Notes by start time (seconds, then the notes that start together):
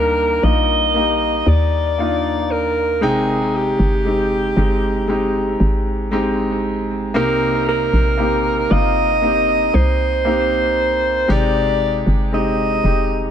Already playing: D2 G3 A#3 D4 D#4 G4 A#4
0.43 A#1 A#3 D#4 F4 D#5
0.95 A#3 D#4 G4
1.46 D#2 D5
1.98 A#3 D4 D#4 F4
2.51 A#4
3.01 G#1 C3 G#3 C4 D#4 G#4 G5
3.55 G4
3.79 G1
4.05 G#3 C4 D#4 G4
4.56 G1 G#3 C4 D#4 G4
5.07 G#3 C4 D#4 G4
5.60 G#1
6.11 G#3 C4 D#4 G4
7.14 C2 C3 A#3 C4 D#4 G4 A#4
7.69 A#4
7.93 A#1
8.17 A#3 C4 D#4 G4
8.70 G1 A#3 C4 D#4 F4 D#5
9.22 A#3 C4 D#4 G4
9.74 C2 C5
10.25 A#3 C4 D#4 G4
11.28 G#1 C3 G#3 C4 D#4 G4 D5
12.07 G1
12.32 G#3 C4 D#4 G4 D#5
12.84 F1 G#3 C4 D#4 G4